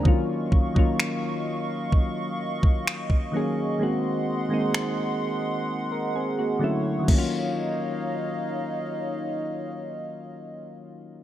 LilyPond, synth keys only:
\new Staff \with { instrumentName = "Synth keys" } { \time 4/4 \key ees \dorian \tempo 4 = 64 << { r1 | r2 r16 bes'16 <c' aes'>16 <bes ges'>8 r8. | r1 | } \\ { <ees ges bes des' f'>8. <ees ges bes des' f'>4.~ <ees ges bes des' f'>16 r4 <ees ges bes des' aes'>8 | <ees aes bes c' ges'>8. <ees aes bes c' ees'>4.~ <ees aes bes c' ees'>16 r8 <d fis a cis' fes'>8 <ees ges bes des' f'>8~ | <ees ges bes des' f'>1 | } >> }